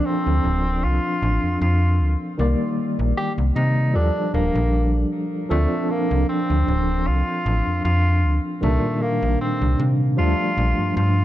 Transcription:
Already playing: F3 C4 D4 A4
0.06 C4
0.26 D2
0.45 D1
0.83 C2 F4
1.22 A1
1.43 F2
1.61 F2 F4
2.00 D2
2.38 C2 D#3 G3 A#3 D5
2.99 A#1
3.17 G4
3.38 C2
3.56 C3 D#4
3.93 D#2 F3 G3 D4 A4
4.34 D#1 A#3
4.55 A#1
5.49 D2 F3 A3 C4 D4 A4
5.90 A#3
6.11 C2
6.29 C4
6.50 D2
6.68 D1
7.07 C2 F4
7.46 A1
7.67 F2
7.85 F2 F4
8.24 D2
8.61 C2 A#2 D#3 G3 A3 D4
9.02 A#3
9.22 A#1
9.41 C4
9.61 C2
9.79 C3
10.17 D#2 F3 G3 A3 D4 F4
10.57 A#1
10.78 G2
10.96 G2 F4

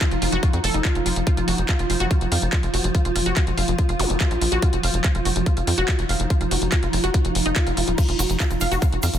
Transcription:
Already playing: F3 D#4
0.01 F4, kick, clap, closed hi-hat
0.11 F1 F4, closed hi-hat
0.22 F1 F4, open hi-hat
0.32 F1 F#4, closed hi-hat
0.43 F4, kick, closed hi-hat
0.53 F2, closed hi-hat
0.64 F1 A4, open hi-hat
0.74 F1 D#4, closed hi-hat
0.85 F4, kick, clap, closed hi-hat
0.95 F1 F4, closed hi-hat
1.06 F1 F4, open hi-hat
1.16 F1, closed hi-hat
1.27 F4, kick, closed hi-hat
1.37 F1 F4, closed hi-hat
1.48 F1 F#4, open hi-hat
1.58 F1, closed hi-hat
1.69 F4, kick, clap, closed hi-hat
1.79 F1 F4, closed hi-hat
1.90 F1 F4, open hi-hat
2.00 F1 F#4, closed hi-hat
2.11 F4, kick, closed hi-hat
2.21 F1, closed hi-hat
2.32 F2 F5, open hi-hat
2.42 F1, closed hi-hat
2.53 F4, kick, clap, closed hi-hat
2.63 F1 F4, closed hi-hat
2.74 F1 F#4, open hi-hat
2.84 F1, closed hi-hat
2.95 F4, kick, closed hi-hat
3.05 F1 F4, closed hi-hat
3.16 F1 F4, open hi-hat
3.26 F1 F#4, closed hi-hat
3.37 F4, kick, clap, closed hi-hat
3.47 F1, closed hi-hat
3.58 F1 F5, open hi-hat
3.68 F1, closed hi-hat
3.78 F4, kick, closed hi-hat
3.89 F1 F4, closed hi-hat
3.99 F1 F#4, open hi-hat, zap
4.10 F1, closed hi-hat
4.20 F4, kick, clap, closed hi-hat
4.31 A#1 F4, closed hi-hat
4.41 A#1 F4, open hi-hat
4.52 A#1 F#4, closed hi-hat
4.62 D#4 F4, kick, closed hi-hat
4.73 F1, closed hi-hat
4.83 F1 F5, open hi-hat
4.94 F1, closed hi-hat
5.04 F4, kick, clap, closed hi-hat
5.15 F1 F4, closed hi-hat
5.25 F1 F#4, open hi-hat
5.36 F1, closed hi-hat
5.46 F4, kick, closed hi-hat
5.57 F1 F4, closed hi-hat
5.67 F2 F4, open hi-hat
5.78 F1 F#4, closed hi-hat
5.88 F4, kick, clap, closed hi-hat
5.99 F1, closed hi-hat
6.09 F1 F5, open hi-hat
6.20 F1, closed hi-hat
6.30 F4, kick, closed hi-hat
6.41 F1 F4, closed hi-hat
6.51 F1 F#4, open hi-hat
6.62 F1, closed hi-hat
6.72 F4, kick, clap, closed hi-hat
6.83 F1 F4, closed hi-hat
6.93 F1 F4, open hi-hat
7.04 F1 F#4, closed hi-hat
7.14 F4, kick, closed hi-hat, swell
7.25 F1, closed hi-hat
7.35 F1, open hi-hat
7.46 F1 D#4, closed hi-hat
7.56 F4, kick, clap, closed hi-hat
7.67 F1 F5, closed hi-hat
7.77 F1 F4, open hi-hat
7.88 D#1 F4, closed hi-hat
7.98 F3 F4, kick, closed hi-hat, crash, shaker
8.09 F1 F4, closed hi-hat
8.19 F1 F#4, open hi-hat, shaker
8.29 F1, closed hi-hat, shaker
8.40 F4, kick, clap, closed hi-hat, shaker
8.50 F1 F4, closed hi-hat, shaker
8.61 F1 F5, open hi-hat, shaker
8.72 F1 F#4, closed hi-hat, shaker
8.82 F4, kick, closed hi-hat, shaker
8.93 F1, closed hi-hat
9.03 F2 F5, open hi-hat, shaker
9.14 F1, closed hi-hat, shaker

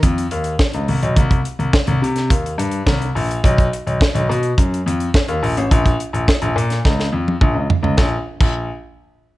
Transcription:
0.03 F2, kick, closed hi-hat
0.18 closed hi-hat
0.31 D#2, closed hi-hat
0.44 closed hi-hat
0.59 kick, snare
0.73 C#2, closed hi-hat
0.88 C2, open hi-hat
1.02 B1, closed hi-hat
1.16 C2, kick, closed hi-hat
1.31 kick, closed hi-hat
1.45 closed hi-hat
1.59 C2, closed hi-hat
1.73 kick, snare
1.87 C2, closed hi-hat
2.02 C3, closed hi-hat
2.16 snare, closed hi-hat
2.30 D#2, kick, closed hi-hat
2.46 closed hi-hat
2.58 G2, closed hi-hat
2.71 closed hi-hat
2.86 C2, kick, snare
3.02 closed hi-hat
3.15 A#1, open hi-hat
3.31 closed hi-hat
3.44 B1, kick, closed hi-hat
3.58 kick, closed hi-hat
3.73 closed hi-hat
3.87 B1, closed hi-hat
4.01 kick, snare
4.15 B1, closed hi-hat
4.29 B2, closed hi-hat
4.43 closed hi-hat
4.58 F#2, kick, closed hi-hat
4.74 closed hi-hat
4.86 F2, closed hi-hat
5.00 closed hi-hat
5.14 kick, snare
5.28 D#2, closed hi-hat
5.43 A#1, open hi-hat
5.57 A1, closed hi-hat
5.71 A#1, kick, closed hi-hat
5.86 kick, closed hi-hat
6.00 closed hi-hat
6.13 A#1, closed hi-hat
6.28 kick, snare
6.42 A#1, closed hi-hat
6.56 A#2, closed hi-hat
6.70 snare, closed hi-hat
6.85 C#2, kick, snare
7.00 snare
7.12 F2
7.28 high tom
7.41 A#1, kick, mid tom
7.54 C#2
7.70 floor tom
7.83 C#2, floor tom
7.98 A#1, kick, snare
8.41 A#1, kick, crash

